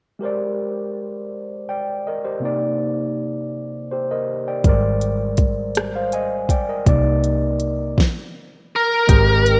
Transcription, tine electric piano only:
0.19 2.38 G#3 soft
0.19 1.66 G4 soft
0.19 1.66 A#4 soft
0.23 1.67 C5 soft
0.23 1.68 D5 medium
1.69 2.04 D5 soft
1.69 2.04 G5 medium
2.07 2.24 A#4 soft
2.07 2.24 D#5 soft
2.25 2.60 G4 soft
2.25 2.59 C5 soft
2.40 4.59 C3 medium
2.40 4.60 A#3 medium
2.44 4.61 D#4 soft
2.44 3.53 D5 medium
3.91 4.09 G4 soft
3.91 4.09 C5 soft
4.11 4.45 A#4 soft
4.11 4.45 D#5 soft
4.48 4.68 D5 soft
4.48 4.82 G5 soft
4.64 6.83 G3 soft
4.64 6.82 G#3 medium
4.64 5.75 A#4 medium
4.64 5.75 C5 soft
4.69 5.76 D5 medium
5.96 6.13 C5 soft
5.96 6.12 F5 soft
6.13 6.49 D#5 soft
6.13 6.48 G#5 medium
6.50 6.68 D5 soft
6.50 6.68 G5 medium
6.69 7.04 A#4 soft
6.69 7.04 D#5 soft
6.85 7.97 C3 medium
6.85 7.98 A#3 medium
6.85 7.98 D#4 medium
6.85 7.99 D5 medium
9.07 9.60 G#3 medium
9.07 9.60 G4 medium
9.07 9.60 A#4 medium
9.12 9.60 C5 medium

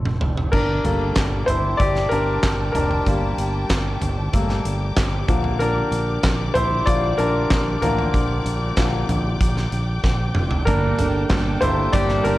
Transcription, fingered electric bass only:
0.00 0.16 F1 medium
0.21 0.47 F1 medium
0.53 0.79 G1 medium
0.85 1.11 G1 medium
1.16 1.42 G1 medium
1.48 1.74 G1 medium
1.80 2.06 G1 medium
2.11 2.38 G1 medium
2.43 2.69 G1 medium
2.74 3.01 F1 medium
3.07 3.33 G1 medium
3.38 3.64 G1 medium
3.70 3.96 G1 medium
4.02 4.28 G1 medium
4.33 4.59 G1 medium
4.65 4.91 G1 medium
4.97 5.23 G1 medium
5.29 5.81 A#1 medium
5.91 6.18 A#1 medium
6.24 6.50 A#1 medium
6.55 6.81 A#1 medium
6.87 7.13 A#1 medium
7.19 7.45 A#1 medium
7.51 7.77 A#1 medium
7.82 8.08 A1 medium
8.14 8.40 A#1 medium
8.46 8.71 A#1 medium
8.77 9.03 A#1 medium
9.09 9.35 A#1 medium
9.40 9.66 A#1 medium
9.72 9.98 A#1 medium
10.04 10.30 A#1 medium
10.35 10.61 F1 medium
10.67 10.93 G1 medium
10.99 11.25 G1 medium
11.30 11.56 G1 medium
11.62 11.88 G1 medium
11.93 12.19 G1 medium
12.25 12.38 G1 medium

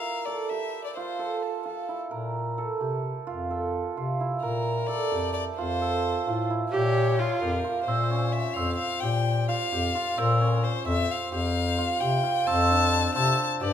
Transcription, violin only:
0.00 0.27 F5 medium
0.26 0.51 D5 medium
0.50 0.84 E5 medium
0.85 0.95 D5 medium
0.97 1.44 C5 medium
1.43 1.66 A4 medium
1.67 1.98 A4 medium
4.41 4.88 A#4 medium
4.87 5.33 D5 medium
5.33 5.44 D5 medium
5.57 6.45 C5 medium
6.72 7.42 C#5 medium
7.40 7.84 A#4 medium
7.85 8.34 C5 medium
8.32 8.55 E5 medium
8.54 8.76 F5 medium
8.76 9.02 F5 medium
9.01 9.48 G5 medium
9.49 10.20 F5 medium
10.18 10.65 A#4 medium
10.64 10.87 C5 medium
10.88 11.13 E5 medium
11.11 11.33 F5 medium
11.35 12.02 F5 medium
12.00 12.49 G5 medium
12.47 13.15 A5 loud
13.16 13.48 A5 loud
13.61 13.73 D5 loud

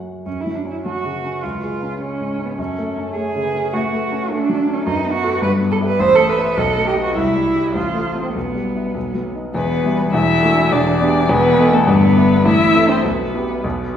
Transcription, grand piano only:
0.00 0.26 F#2 soft
0.00 0.22 F#3 soft
0.00 0.23 C#4 soft
0.00 0.23 A4 soft
0.26 1.39 F#2 soft
0.46 0.77 F#3 soft
0.65 0.96 C#4 soft
0.85 1.16 F#3 soft
1.05 1.36 C#3 soft
1.25 1.44 C#4 soft
1.44 2.55 C#2 soft
1.63 1.94 G#3 soft
1.83 2.13 C#4 soft
2.01 2.32 G#3 soft
2.21 2.51 G#2 soft
2.40 2.59 C#4 soft
2.59 3.70 F#2 soft
2.79 3.09 A3 soft
2.98 3.28 C#4 soft
3.16 3.47 A3 soft
3.36 3.66 C#3 soft
3.55 3.73 C#4 soft
3.74 4.83 A2 medium
3.93 4.23 A3 soft
4.12 4.42 C#4 soft
4.31 4.61 A3 medium
4.49 4.79 F#3 medium
4.68 4.86 C#4 soft
4.86 5.41 F#2 medium
5.05 5.35 B3 medium
5.24 5.40 F#4 medium
5.24 5.41 A4 medium
5.42 5.98 G2 medium
5.61 5.92 B3 medium
5.80 5.98 E4 soft
5.80 5.98 G4 medium
5.99 6.56 A1 medium
6.18 6.50 A3 medium
6.38 6.55 E4 medium
6.38 6.56 C5 medium
6.57 7.14 B1 medium
6.77 7.08 A3 medium
6.96 7.14 D#4 soft
6.96 7.14 B4 soft
7.16 7.73 C2 medium
7.36 7.67 G3 medium
7.55 7.73 E4 soft
7.55 7.73 G4 soft
7.75 8.33 A1 medium
7.94 8.27 A3 soft
8.15 8.33 C4 soft
8.15 8.34 F4 soft
8.35 8.93 B1 soft
8.55 8.87 G3 soft
8.75 8.93 B3 soft
8.75 8.93 E4 soft
8.95 9.53 B1 soft
9.14 9.47 F#3 soft
9.35 9.53 B3 soft
9.35 9.53 D#4 soft
9.54 9.83 E1 medium
9.54 9.83 E2 medium
9.84 10.11 G3 medium
9.84 10.11 B3 medium
9.84 10.11 E4 medium
10.13 10.42 E1 medium
10.13 10.42 E2 medium
10.43 10.69 A3 medium
10.43 10.69 D4 medium
10.43 10.69 F#4 medium
10.71 10.99 E1 medium
10.71 10.99 E2 medium
11.01 11.27 B3 medium
11.01 11.27 D4 medium
11.01 11.27 G4 medium
11.29 11.57 E1 medium
11.29 11.57 E2 medium
11.58 11.84 B3 medium
11.58 11.84 D#4 medium
11.58 11.85 A4 medium
11.87 12.15 G1 medium
11.87 12.15 G2 medium
12.16 12.42 B3 medium
12.16 12.42 E4 medium
12.16 12.43 B4 medium
12.45 12.74 A1 medium
12.45 12.74 A2 medium
12.75 13.02 C4 soft
12.75 13.02 E4 medium
12.75 13.02 A4 medium
13.04 13.33 B1 medium
13.04 13.33 B2 medium
13.34 13.61 B3 soft
13.34 13.61 E4 soft
13.34 13.62 G4 medium
13.64 13.93 B1 medium
13.64 13.93 B2 medium

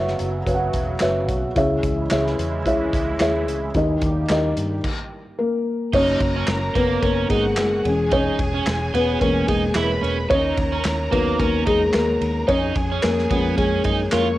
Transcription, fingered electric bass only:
0.00 0.15 F#1 medium
0.20 0.42 F#1 medium
0.47 0.69 F#1 loud
0.74 0.96 E1 medium
1.02 1.29 F#1 medium
1.29 1.51 B1 medium
1.56 1.79 C#2 medium
1.83 2.06 C#2 medium
2.12 2.34 C#2 loud
2.38 2.66 E2 medium
2.66 2.88 C#2 loud
2.94 3.16 C#2 medium
3.20 3.48 D#2 medium
3.48 3.70 C#2 medium
3.75 3.97 D#2 loud
4.02 4.25 D#2 medium
4.30 4.52 D#2 medium
4.57 4.79 G2 medium
5.93 6.16 F#1 medium
6.20 6.43 F#1 medium
6.48 6.70 F#1 loud
6.75 6.98 F#1 medium
7.02 7.25 F#1 loud
7.30 7.58 G#1 medium
7.58 7.80 F#1 loud
7.85 8.29 E1 loud
8.39 8.62 E1 loud
8.67 8.89 E1 loud
8.94 9.16 E1 loud
9.21 9.44 E1 loud
9.48 9.71 E1 medium
9.75 9.98 E1 loud
10.02 10.25 E1 loud
10.31 10.53 D#2 loud
10.58 10.80 D#2 loud
10.85 11.07 D#2 loud
11.13 11.35 D#2 medium
11.39 11.62 D#2 loud
11.67 11.89 E2 medium
11.94 12.17 D#2 medium
12.21 12.44 D#2 medium
12.49 12.71 F2 medium
12.76 12.99 F2 loud
13.04 13.26 F2 loud
13.31 13.53 F2 medium
13.58 13.81 F2 loud
13.85 14.08 F#2 medium
14.13 14.36 F2 loud

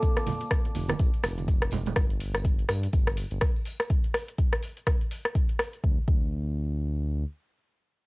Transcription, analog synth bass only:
0.75 0.94 F1 loud
1.00 1.10 A#1 loud
1.23 1.92 F1 loud
1.96 2.64 G1 loud
2.69 2.87 G2 medium
2.93 3.25 G1 medium
3.31 3.39 G1 loud
5.84 5.98 D2 loud
6.08 7.25 D2 loud

